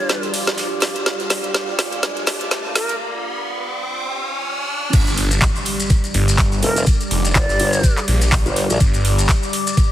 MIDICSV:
0, 0, Header, 1, 9, 480
1, 0, Start_track
1, 0, Tempo, 483871
1, 1054, Time_signature, 4, 2, 24, 8
1, 9840, End_track
2, 0, Start_track
2, 0, Title_t, "Flute"
2, 0, Program_c, 0, 73
2, 0, Note_on_c, 0, 74, 100
2, 291, Note_off_c, 0, 74, 0
2, 2734, Note_on_c, 0, 70, 97
2, 2920, Note_off_c, 0, 70, 0
2, 6574, Note_on_c, 0, 70, 98
2, 6761, Note_off_c, 0, 70, 0
2, 7295, Note_on_c, 0, 74, 100
2, 7973, Note_off_c, 0, 74, 0
2, 9840, End_track
3, 0, Start_track
3, 0, Title_t, "Ambient pad"
3, 0, Program_c, 1, 92
3, 0, Note_on_c, 1, 55, 70
3, 0, Note_on_c, 1, 67, 79
3, 0, Note_on_c, 1, 74, 80
3, 0, Note_on_c, 1, 86, 77
3, 2974, Note_off_c, 1, 74, 0
3, 2974, Note_off_c, 1, 86, 0
3, 2975, Note_off_c, 1, 55, 0
3, 2975, Note_off_c, 1, 67, 0
3, 4896, Note_on_c, 1, 55, 75
3, 4969, Note_on_c, 1, 67, 92
3, 5350, Note_on_c, 1, 74, 83
3, 6111, Note_on_c, 1, 86, 90
3, 9840, Note_off_c, 1, 55, 0
3, 9840, Note_off_c, 1, 67, 0
3, 9840, Note_off_c, 1, 74, 0
3, 9840, Note_off_c, 1, 86, 0
3, 9840, End_track
4, 0, Start_track
4, 0, Title_t, "Analog synth pad"
4, 0, Program_c, 2, 89
4, 0, Note_on_c, 2, 55, 84
4, 0, Note_on_c, 2, 62, 75
4, 0, Note_on_c, 2, 65, 95
4, 4853, Note_off_c, 2, 55, 0
4, 4853, Note_off_c, 2, 62, 0
4, 4853, Note_off_c, 2, 65, 0
4, 4893, Note_on_c, 2, 55, 83
4, 4893, Note_on_c, 2, 62, 76
4, 4893, Note_on_c, 2, 67, 93
4, 9840, Note_off_c, 2, 55, 0
4, 9840, Note_off_c, 2, 62, 0
4, 9840, Note_off_c, 2, 67, 0
4, 9840, End_track
5, 0, Start_track
5, 0, Title_t, "Detuned saw bass"
5, 0, Program_c, 3, 39
5, 4895, Note_on_c, 3, 31, 94
5, 5009, Note_off_c, 3, 31, 0
5, 5030, Note_on_c, 3, 31, 98
5, 5357, Note_off_c, 3, 31, 0
5, 6094, Note_on_c, 3, 31, 97
5, 6557, Note_off_c, 3, 31, 0
5, 7054, Note_on_c, 3, 29, 97
5, 7277, Note_off_c, 3, 29, 0
5, 7431, Note_on_c, 3, 31, 93
5, 7517, Note_off_c, 3, 31, 0
5, 8015, Note_on_c, 3, 34, 94
5, 8369, Note_off_c, 3, 34, 0
5, 8735, Note_on_c, 3, 31, 94
5, 8849, Note_off_c, 3, 31, 0
5, 8870, Note_on_c, 3, 31, 98
5, 9197, Note_off_c, 3, 31, 0
5, 9840, End_track
6, 0, Start_track
6, 0, Title_t, "Wobble bass"
6, 0, Program_c, 4, 39
6, 6574, Note_on_c, 4, 29, 100
6, 6797, Note_off_c, 4, 29, 0
6, 7295, Note_on_c, 4, 31, 99
6, 7409, Note_off_c, 4, 31, 0
6, 7534, Note_on_c, 4, 31, 101
6, 7757, Note_off_c, 4, 31, 0
6, 8390, Note_on_c, 4, 31, 92
6, 8608, Note_off_c, 4, 31, 0
6, 8631, Note_on_c, 4, 34, 100
6, 8717, Note_off_c, 4, 34, 0
6, 9840, End_track
7, 0, Start_track
7, 0, Title_t, "Impact"
7, 0, Program_c, 5, 103
7, 4894, Note_on_c, 5, 60, 73
7, 6814, Note_off_c, 5, 60, 0
7, 9840, End_track
8, 0, Start_track
8, 0, Title_t, "Riser"
8, 0, Program_c, 6, 103
8, 0, Note_on_c, 6, 60, 74
8, 4893, Note_off_c, 6, 60, 0
8, 9840, End_track
9, 0, Start_track
9, 0, Title_t, "Drums"
9, 90, Note_on_c, 9, 42, 90
9, 94, Note_off_c, 9, 42, 0
9, 94, Note_on_c, 9, 38, 64
9, 94, Note_on_c, 9, 42, 63
9, 193, Note_off_c, 9, 38, 0
9, 193, Note_off_c, 9, 42, 0
9, 231, Note_on_c, 9, 42, 35
9, 237, Note_off_c, 9, 42, 0
9, 237, Note_on_c, 9, 42, 43
9, 333, Note_on_c, 9, 46, 100
9, 334, Note_off_c, 9, 46, 0
9, 334, Note_on_c, 9, 46, 78
9, 336, Note_off_c, 9, 42, 0
9, 433, Note_off_c, 9, 46, 0
9, 470, Note_on_c, 9, 38, 59
9, 470, Note_on_c, 9, 42, 50
9, 472, Note_off_c, 9, 38, 0
9, 472, Note_on_c, 9, 38, 34
9, 569, Note_off_c, 9, 42, 0
9, 570, Note_off_c, 9, 38, 0
9, 570, Note_on_c, 9, 38, 120
9, 573, Note_on_c, 9, 46, 60
9, 574, Note_on_c, 9, 42, 79
9, 670, Note_off_c, 9, 38, 0
9, 672, Note_off_c, 9, 46, 0
9, 674, Note_off_c, 9, 42, 0
9, 797, Note_on_c, 9, 42, 69
9, 814, Note_on_c, 9, 38, 72
9, 814, Note_on_c, 9, 46, 95
9, 820, Note_off_c, 9, 38, 0
9, 820, Note_on_c, 9, 38, 44
9, 896, Note_off_c, 9, 42, 0
9, 913, Note_off_c, 9, 46, 0
9, 919, Note_off_c, 9, 38, 0
9, 951, Note_on_c, 9, 42, 53
9, 1050, Note_off_c, 9, 42, 0
9, 1053, Note_on_c, 9, 38, 73
9, 1053, Note_on_c, 9, 42, 67
9, 1056, Note_off_c, 9, 42, 0
9, 1056, Note_on_c, 9, 42, 83
9, 1153, Note_off_c, 9, 38, 0
9, 1155, Note_off_c, 9, 42, 0
9, 1189, Note_on_c, 9, 42, 36
9, 1199, Note_off_c, 9, 42, 0
9, 1199, Note_on_c, 9, 42, 40
9, 1287, Note_off_c, 9, 42, 0
9, 1287, Note_on_c, 9, 42, 70
9, 1292, Note_on_c, 9, 38, 74
9, 1292, Note_on_c, 9, 46, 97
9, 1386, Note_off_c, 9, 42, 0
9, 1392, Note_off_c, 9, 38, 0
9, 1392, Note_off_c, 9, 46, 0
9, 1430, Note_on_c, 9, 42, 50
9, 1529, Note_off_c, 9, 42, 0
9, 1532, Note_on_c, 9, 38, 76
9, 1532, Note_on_c, 9, 42, 68
9, 1535, Note_off_c, 9, 42, 0
9, 1535, Note_on_c, 9, 42, 79
9, 1536, Note_off_c, 9, 38, 0
9, 1536, Note_on_c, 9, 38, 116
9, 1634, Note_off_c, 9, 42, 0
9, 1635, Note_off_c, 9, 38, 0
9, 1773, Note_on_c, 9, 38, 81
9, 1773, Note_on_c, 9, 46, 102
9, 1774, Note_on_c, 9, 42, 64
9, 1872, Note_off_c, 9, 38, 0
9, 1872, Note_off_c, 9, 46, 0
9, 1873, Note_off_c, 9, 42, 0
9, 1910, Note_on_c, 9, 42, 52
9, 2009, Note_off_c, 9, 42, 0
9, 2014, Note_on_c, 9, 38, 83
9, 2014, Note_on_c, 9, 42, 67
9, 2017, Note_off_c, 9, 42, 0
9, 2017, Note_on_c, 9, 42, 84
9, 2113, Note_off_c, 9, 38, 0
9, 2116, Note_off_c, 9, 42, 0
9, 2150, Note_on_c, 9, 42, 37
9, 2247, Note_off_c, 9, 42, 0
9, 2247, Note_on_c, 9, 42, 69
9, 2253, Note_on_c, 9, 38, 83
9, 2253, Note_on_c, 9, 46, 101
9, 2346, Note_off_c, 9, 42, 0
9, 2353, Note_off_c, 9, 38, 0
9, 2353, Note_off_c, 9, 46, 0
9, 2390, Note_on_c, 9, 42, 52
9, 2489, Note_off_c, 9, 42, 0
9, 2490, Note_on_c, 9, 42, 92
9, 2492, Note_on_c, 9, 38, 114
9, 2493, Note_off_c, 9, 38, 0
9, 2493, Note_off_c, 9, 42, 0
9, 2493, Note_on_c, 9, 38, 86
9, 2493, Note_on_c, 9, 42, 68
9, 2592, Note_off_c, 9, 38, 0
9, 2592, Note_off_c, 9, 42, 0
9, 2733, Note_on_c, 9, 38, 89
9, 2733, Note_on_c, 9, 46, 99
9, 2736, Note_on_c, 9, 42, 76
9, 2832, Note_off_c, 9, 38, 0
9, 2832, Note_off_c, 9, 46, 0
9, 2835, Note_off_c, 9, 42, 0
9, 2868, Note_on_c, 9, 42, 45
9, 2870, Note_off_c, 9, 42, 0
9, 2870, Note_on_c, 9, 42, 54
9, 2969, Note_off_c, 9, 42, 0
9, 4890, Note_on_c, 9, 42, 92
9, 4894, Note_off_c, 9, 42, 0
9, 4894, Note_on_c, 9, 36, 122
9, 4894, Note_on_c, 9, 42, 66
9, 4894, Note_on_c, 9, 49, 105
9, 4894, Note_on_c, 9, 70, 65
9, 4993, Note_off_c, 9, 36, 0
9, 4993, Note_off_c, 9, 42, 0
9, 4993, Note_off_c, 9, 49, 0
9, 4993, Note_off_c, 9, 70, 0
9, 5031, Note_on_c, 9, 42, 38
9, 5032, Note_off_c, 9, 42, 0
9, 5032, Note_on_c, 9, 42, 48
9, 5037, Note_on_c, 9, 70, 37
9, 5131, Note_off_c, 9, 42, 0
9, 5134, Note_on_c, 9, 46, 108
9, 5136, Note_off_c, 9, 70, 0
9, 5139, Note_on_c, 9, 42, 76
9, 5233, Note_off_c, 9, 46, 0
9, 5238, Note_off_c, 9, 42, 0
9, 5269, Note_on_c, 9, 70, 81
9, 5270, Note_on_c, 9, 42, 54
9, 5369, Note_off_c, 9, 70, 0
9, 5370, Note_off_c, 9, 42, 0
9, 5371, Note_on_c, 9, 38, 109
9, 5373, Note_on_c, 9, 70, 64
9, 5374, Note_on_c, 9, 36, 118
9, 5374, Note_on_c, 9, 42, 72
9, 5378, Note_off_c, 9, 42, 0
9, 5378, Note_on_c, 9, 39, 126
9, 5378, Note_on_c, 9, 42, 83
9, 5470, Note_off_c, 9, 38, 0
9, 5472, Note_off_c, 9, 70, 0
9, 5473, Note_off_c, 9, 36, 0
9, 5477, Note_off_c, 9, 39, 0
9, 5477, Note_off_c, 9, 42, 0
9, 5513, Note_on_c, 9, 70, 38
9, 5607, Note_on_c, 9, 42, 66
9, 5612, Note_off_c, 9, 70, 0
9, 5614, Note_on_c, 9, 46, 105
9, 5706, Note_off_c, 9, 42, 0
9, 5713, Note_off_c, 9, 46, 0
9, 5750, Note_on_c, 9, 42, 55
9, 5752, Note_on_c, 9, 70, 78
9, 5849, Note_off_c, 9, 70, 0
9, 5849, Note_on_c, 9, 70, 62
9, 5850, Note_off_c, 9, 42, 0
9, 5854, Note_on_c, 9, 36, 115
9, 5854, Note_on_c, 9, 42, 83
9, 5949, Note_off_c, 9, 70, 0
9, 5953, Note_off_c, 9, 36, 0
9, 5954, Note_off_c, 9, 42, 0
9, 5991, Note_on_c, 9, 42, 39
9, 5994, Note_on_c, 9, 70, 38
9, 6090, Note_off_c, 9, 42, 0
9, 6093, Note_off_c, 9, 70, 0
9, 6094, Note_on_c, 9, 46, 104
9, 6096, Note_on_c, 9, 42, 66
9, 6193, Note_off_c, 9, 46, 0
9, 6195, Note_off_c, 9, 42, 0
9, 6230, Note_on_c, 9, 42, 56
9, 6236, Note_on_c, 9, 70, 73
9, 6330, Note_off_c, 9, 42, 0
9, 6333, Note_on_c, 9, 38, 117
9, 6333, Note_on_c, 9, 42, 66
9, 6334, Note_on_c, 9, 36, 123
9, 6335, Note_off_c, 9, 70, 0
9, 6335, Note_on_c, 9, 70, 62
9, 6337, Note_on_c, 9, 39, 125
9, 6339, Note_off_c, 9, 42, 0
9, 6339, Note_on_c, 9, 42, 93
9, 6433, Note_off_c, 9, 38, 0
9, 6434, Note_off_c, 9, 36, 0
9, 6434, Note_off_c, 9, 70, 0
9, 6436, Note_off_c, 9, 39, 0
9, 6438, Note_off_c, 9, 42, 0
9, 6467, Note_on_c, 9, 70, 37
9, 6566, Note_off_c, 9, 70, 0
9, 6571, Note_on_c, 9, 42, 74
9, 6573, Note_on_c, 9, 46, 106
9, 6670, Note_off_c, 9, 42, 0
9, 6672, Note_off_c, 9, 46, 0
9, 6708, Note_on_c, 9, 42, 40
9, 6710, Note_off_c, 9, 42, 0
9, 6710, Note_on_c, 9, 42, 55
9, 6714, Note_on_c, 9, 70, 82
9, 6808, Note_off_c, 9, 70, 0
9, 6808, Note_on_c, 9, 70, 69
9, 6809, Note_off_c, 9, 42, 0
9, 6814, Note_on_c, 9, 42, 67
9, 6815, Note_on_c, 9, 36, 119
9, 6819, Note_off_c, 9, 42, 0
9, 6819, Note_on_c, 9, 42, 80
9, 6907, Note_off_c, 9, 70, 0
9, 6914, Note_off_c, 9, 36, 0
9, 6918, Note_off_c, 9, 42, 0
9, 6950, Note_on_c, 9, 42, 37
9, 6950, Note_on_c, 9, 70, 40
9, 7049, Note_off_c, 9, 42, 0
9, 7049, Note_off_c, 9, 70, 0
9, 7051, Note_on_c, 9, 42, 64
9, 7054, Note_on_c, 9, 46, 112
9, 7151, Note_off_c, 9, 42, 0
9, 7153, Note_off_c, 9, 46, 0
9, 7191, Note_on_c, 9, 42, 52
9, 7191, Note_on_c, 9, 70, 78
9, 7286, Note_off_c, 9, 42, 0
9, 7286, Note_on_c, 9, 42, 84
9, 7289, Note_on_c, 9, 38, 106
9, 7290, Note_off_c, 9, 70, 0
9, 7291, Note_on_c, 9, 70, 63
9, 7294, Note_off_c, 9, 42, 0
9, 7294, Note_on_c, 9, 36, 119
9, 7294, Note_on_c, 9, 42, 67
9, 7298, Note_on_c, 9, 39, 127
9, 7388, Note_off_c, 9, 38, 0
9, 7390, Note_off_c, 9, 70, 0
9, 7394, Note_off_c, 9, 36, 0
9, 7394, Note_off_c, 9, 42, 0
9, 7397, Note_off_c, 9, 39, 0
9, 7429, Note_on_c, 9, 38, 51
9, 7433, Note_on_c, 9, 70, 42
9, 7528, Note_off_c, 9, 38, 0
9, 7531, Note_on_c, 9, 42, 65
9, 7532, Note_off_c, 9, 70, 0
9, 7534, Note_on_c, 9, 46, 110
9, 7630, Note_off_c, 9, 42, 0
9, 7633, Note_off_c, 9, 46, 0
9, 7666, Note_on_c, 9, 70, 79
9, 7671, Note_on_c, 9, 42, 51
9, 7765, Note_off_c, 9, 70, 0
9, 7768, Note_off_c, 9, 42, 0
9, 7768, Note_on_c, 9, 42, 82
9, 7774, Note_off_c, 9, 42, 0
9, 7774, Note_on_c, 9, 36, 120
9, 7774, Note_on_c, 9, 42, 67
9, 7775, Note_on_c, 9, 70, 69
9, 7873, Note_off_c, 9, 42, 0
9, 7874, Note_off_c, 9, 36, 0
9, 7874, Note_off_c, 9, 70, 0
9, 7911, Note_on_c, 9, 42, 37
9, 7912, Note_on_c, 9, 70, 39
9, 7915, Note_on_c, 9, 39, 38
9, 8010, Note_off_c, 9, 42, 0
9, 8011, Note_off_c, 9, 70, 0
9, 8012, Note_on_c, 9, 46, 75
9, 8014, Note_off_c, 9, 39, 0
9, 8014, Note_off_c, 9, 46, 0
9, 8014, Note_on_c, 9, 46, 112
9, 8113, Note_off_c, 9, 46, 0
9, 8147, Note_on_c, 9, 70, 88
9, 8151, Note_on_c, 9, 42, 53
9, 8154, Note_on_c, 9, 38, 43
9, 8246, Note_off_c, 9, 70, 0
9, 8249, Note_off_c, 9, 38, 0
9, 8249, Note_off_c, 9, 42, 0
9, 8249, Note_on_c, 9, 38, 109
9, 8249, Note_on_c, 9, 42, 94
9, 8254, Note_on_c, 9, 36, 120
9, 8254, Note_on_c, 9, 70, 66
9, 8255, Note_on_c, 9, 46, 64
9, 8258, Note_on_c, 9, 39, 123
9, 8348, Note_off_c, 9, 38, 0
9, 8348, Note_off_c, 9, 42, 0
9, 8354, Note_off_c, 9, 36, 0
9, 8354, Note_off_c, 9, 46, 0
9, 8354, Note_off_c, 9, 70, 0
9, 8358, Note_off_c, 9, 39, 0
9, 8392, Note_on_c, 9, 42, 37
9, 8393, Note_on_c, 9, 70, 40
9, 8491, Note_off_c, 9, 42, 0
9, 8492, Note_off_c, 9, 70, 0
9, 8494, Note_on_c, 9, 38, 46
9, 8494, Note_on_c, 9, 46, 111
9, 8499, Note_on_c, 9, 42, 64
9, 8594, Note_off_c, 9, 38, 0
9, 8594, Note_off_c, 9, 46, 0
9, 8598, Note_off_c, 9, 42, 0
9, 8630, Note_on_c, 9, 70, 78
9, 8632, Note_on_c, 9, 42, 55
9, 8729, Note_off_c, 9, 70, 0
9, 8731, Note_off_c, 9, 42, 0
9, 8731, Note_on_c, 9, 42, 90
9, 8732, Note_on_c, 9, 70, 63
9, 8734, Note_on_c, 9, 36, 124
9, 8736, Note_off_c, 9, 42, 0
9, 8736, Note_on_c, 9, 42, 65
9, 8831, Note_off_c, 9, 70, 0
9, 8834, Note_off_c, 9, 36, 0
9, 8835, Note_off_c, 9, 42, 0
9, 8863, Note_on_c, 9, 42, 41
9, 8871, Note_on_c, 9, 70, 44
9, 8872, Note_off_c, 9, 42, 0
9, 8872, Note_on_c, 9, 42, 35
9, 8970, Note_off_c, 9, 70, 0
9, 8971, Note_off_c, 9, 42, 0
9, 8975, Note_on_c, 9, 46, 113
9, 8981, Note_on_c, 9, 42, 70
9, 9074, Note_off_c, 9, 46, 0
9, 9080, Note_off_c, 9, 42, 0
9, 9112, Note_on_c, 9, 42, 50
9, 9113, Note_on_c, 9, 70, 83
9, 9211, Note_off_c, 9, 42, 0
9, 9211, Note_on_c, 9, 38, 120
9, 9212, Note_off_c, 9, 70, 0
9, 9214, Note_on_c, 9, 36, 119
9, 9215, Note_on_c, 9, 42, 65
9, 9217, Note_off_c, 9, 42, 0
9, 9217, Note_on_c, 9, 42, 93
9, 9219, Note_on_c, 9, 39, 126
9, 9221, Note_on_c, 9, 70, 68
9, 9310, Note_off_c, 9, 38, 0
9, 9313, Note_off_c, 9, 36, 0
9, 9316, Note_off_c, 9, 42, 0
9, 9318, Note_off_c, 9, 39, 0
9, 9320, Note_off_c, 9, 70, 0
9, 9353, Note_on_c, 9, 70, 44
9, 9452, Note_off_c, 9, 70, 0
9, 9455, Note_on_c, 9, 42, 73
9, 9455, Note_on_c, 9, 46, 112
9, 9554, Note_off_c, 9, 42, 0
9, 9555, Note_off_c, 9, 46, 0
9, 9592, Note_on_c, 9, 42, 51
9, 9593, Note_on_c, 9, 70, 88
9, 9691, Note_off_c, 9, 42, 0
9, 9692, Note_off_c, 9, 70, 0
9, 9694, Note_on_c, 9, 42, 81
9, 9695, Note_on_c, 9, 36, 121
9, 9696, Note_off_c, 9, 42, 0
9, 9696, Note_on_c, 9, 42, 63
9, 9697, Note_on_c, 9, 70, 75
9, 9794, Note_off_c, 9, 36, 0
9, 9795, Note_off_c, 9, 42, 0
9, 9796, Note_off_c, 9, 70, 0
9, 9840, End_track
0, 0, End_of_file